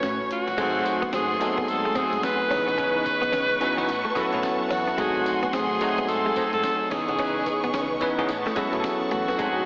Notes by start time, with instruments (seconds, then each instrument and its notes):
Already playing: tine electric piano A3 C#4 F#4 B4, alto saxophone C#5
0.03 fingered electric bass A2, snare, closed hi-hat
0.20 fingered electric bass A1
0.31 alto saxophone F#4, closed hi-hat
0.47 fingered electric bass F#1, snare, closed hi-hat
0.57 fingered electric bass G#1, tine electric piano F#3 A3 C4 D#4 G#4, clean electric guitar G#3, string section A3 F#5 G#5 C6, horn section C4 F#4 G#4 A4, kick, closed hi-hat, crash, tambourine
0.85 muted clean electric guitar stroke, closed hi-hat, tambourine
1.02 fingered electric bass F#1, clean electric guitar B3, kick, closed hi-hat
1.13 fingered electric bass G#1, clean electric guitar C4, alto saxophone G#4, snare, closed hi-hat, tambourine
1.40 tine electric piano F#3 A3 B3 D#4 A4, horn section C4 F#4 G#4 A4, muted clean electric guitar stroke, closed hi-hat, tambourine
1.47 tine electric piano C4
1.58 fingered electric bass G#1, clean electric guitar B3, kick, closed hi-hat
1.68 fingered electric bass G#2, alto saxophone A4, muted clean electric guitar stroke, closed hi-hat, tambourine
1.85 clean electric guitar G#3
1.95 horn section C4 F#4 G#4 A4, clean electric guitar C4, alto saxophone G#4, muted fingered electric bass stroke, kick, closed hi-hat, tambourine
2.13 fingered electric bass G#2, closed hi-hat
2.23 alto saxophone B4, muted clean electric guitar stroke, snare, closed hi-hat, tambourine
2.50 fingered electric bass C#2, tine electric piano E3 B3 C#4 D#4 G#4, clean electric guitar C#4, string section B4 C#5 D#5 C#6, open hi-hat
2.68 fingered electric bass B1, clean electric guitar B3, closed hi-hat
2.77 fingered electric bass C#2, horn section C#4 D#4 E4 B4, clean electric guitar C#4, alto saxophone B4, kick, closed hi-hat, tambourine
3.05 muted clean electric guitar stroke, kick, closed hi-hat, tambourine
3.22 fingered electric bass B1, clean electric guitar B3, closed hi-hat
3.32 fingered electric bass C#2, clean electric guitar C#4, snare, closed hi-hat, tambourine
3.60 tine electric piano E3 B3 C#4 D#4 F#4, horn section C#4 D#4 E4 B4, muted clean electric guitar stroke, closed hi-hat, tambourine
3.77 fingered electric bass C#2, tine electric piano E3 B3 C#4 D#4 B4, clean electric guitar B3, closed hi-hat
3.88 fingered electric bass A2, string section F#5 A5, muted clean electric guitar stroke, closed hi-hat, tambourine
4.05 clean electric guitar A3
4.15 tine electric piano F#3 B3 C#4 E4 A4, clean electric guitar B3, horn section B3 C#4 F#4 A4, muted fingered electric bass stroke, kick, closed hi-hat, tambourine
4.33 fingered electric bass A2, tine electric piano F#3 B3 C#4 E4 F#4, closed hi-hat
4.43 muted clean electric guitar stroke, snare, closed hi-hat, tambourine
4.71 fingered electric bass E2, clean electric guitar C#4, alto saxophone F#4, open hi-hat
4.88 fingered electric bass F#1, clean electric guitar B3, closed hi-hat
4.98 fingered electric bass G#1, tine electric piano F#3 A3 C4 D#4 G#4, clean electric guitar G#3, string section A3 F#5 G#5 C6, horn section A3 C4 F#4 G#4, kick, closed hi-hat, tambourine
5.26 muted clean electric guitar stroke, closed hi-hat, tambourine
5.43 fingered electric bass F#1, clean electric guitar B3, kick, closed hi-hat
5.53 fingered electric bass G#1, clean electric guitar C4, alto saxophone G#4, snare, closed hi-hat, tambourine
5.81 tine electric piano F#3 A3 C4 D#4 F#4, horn section A3 C4 F#4 G#4, muted clean electric guitar stroke, closed hi-hat, tambourine
5.98 fingered electric bass G#1, clean electric guitar B3, kick, closed hi-hat
6.09 fingered electric bass G#2, alto saxophone A4, muted clean electric guitar stroke, closed hi-hat, tambourine
6.26 clean electric guitar G#3
6.36 horn section A3 C4 F#4 G#4, clean electric guitar C4, muted fingered electric bass stroke, kick, closed hi-hat, tambourine
6.53 fingered electric bass G#2, alto saxophone A4, closed hi-hat
6.64 muted clean electric guitar stroke, snare, closed hi-hat, tambourine
6.90 fingered electric bass C#2, tine electric piano E3 B3 C#4 D#4 G#4, clean electric guitar C#4, alto saxophone G#4, string section B4 C#5 D#5 C#6, open hi-hat
7.08 fingered electric bass B1, clean electric guitar B3, closed hi-hat
7.18 fingered electric bass C#2, horn section C#4 D#4 E4 B4, clean electric guitar C#4, kick, closed hi-hat, tambourine
7.46 muted clean electric guitar stroke, kick, closed hi-hat, tambourine
7.64 fingered electric bass B1, clean electric guitar B3, closed hi-hat
7.74 fingered electric bass C#2, clean electric guitar C#4, snare, closed hi-hat, tambourine
8.01 tine electric piano E3 B3 C#4 D#4 B4, horn section C#4 D#4 E4 B4, muted clean electric guitar stroke, kick, closed hi-hat, tambourine
8.18 fingered electric bass C#2, tine electric piano E3 B3 C#4 D#4 G#4, clean electric guitar B3, closed hi-hat
8.28 fingered electric bass A2, string section F#5 A5 C#6, muted clean electric guitar stroke, closed hi-hat, tambourine
8.46 clean electric guitar A3, snare
8.55 tine electric piano F#3 B3 C#4 E4 A4, clean electric guitar G#3, horn section B3 C#4 F#4 A4, muted fingered electric bass stroke, kick, closed hi-hat, tambourine
8.72 fingered electric bass A2, tine electric piano F#3 B3 C#4 E4 G#4, kick, closed hi-hat
8.80 tine electric piano A4, muted clean electric guitar stroke, closed hi-hat
8.84 snare, tambourine
9.11 fingered electric bass E2, clean electric guitar A3, alto saxophone F#4, closed hi-hat
9.28 fingered electric bass F#1, clean electric guitar B3, snare, closed hi-hat
9.38 fingered electric bass G#1, tine electric piano F#3 A3 C4 D#4 G#4, clean electric guitar G#3, string section A3 G#5 C6, horn section A3 C4 F#4 G#4, kick, closed hi-hat, tambourine